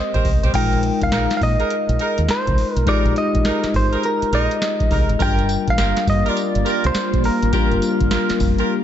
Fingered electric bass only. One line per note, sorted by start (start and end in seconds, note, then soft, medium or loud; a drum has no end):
0.15 0.22 A#1 medium
0.25 0.39 C2 medium
0.43 0.51 B1 medium
0.54 0.90 A#1 loud
1.02 1.10 C2 loud
1.12 1.26 A#1 medium
1.41 1.55 A#2 loud
1.89 1.97 A#1 medium
2.18 2.26 D#2 medium
2.29 muted fingered electric bass stroke soft
2.47 2.55 C2 medium
2.76 2.84 B1 medium
3.05 3.13 A#1 loud
3.35 3.42 A#1 loud
3.64 muted fingered electric bass stroke soft
3.74 3.88 G#1 medium
4.22 muted fingered electric bass stroke medium
4.32 4.46 A#1 loud
4.91 5.05 C2 medium
5.10 5.17 G#1 loud
5.20 5.56 G1 loud
5.68 5.75 A#1 medium
5.78 5.92 G1 medium
6.07 6.21 G2 medium
6.56 6.63 G1 medium
6.85 6.92 C2 loud
6.95 muted fingered electric bass stroke soft
7.13 7.21 A#1 medium
7.43 7.50 G#1 medium
7.72 7.79 G1 medium
8.01 8.09 G1 medium
8.30 muted fingered electric bass stroke soft
8.40 8.54 F1 loud